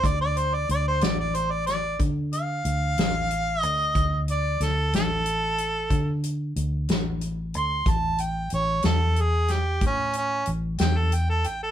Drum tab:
HH |xxxxxxxxxxxx|xxxxxxxxxxxx|xxxxxxxxxxxx|
SD |---o-o---o--|--oo-----o--|---o-o---o--|
BD |o-----o-----|o-----o-----|o-----o-----|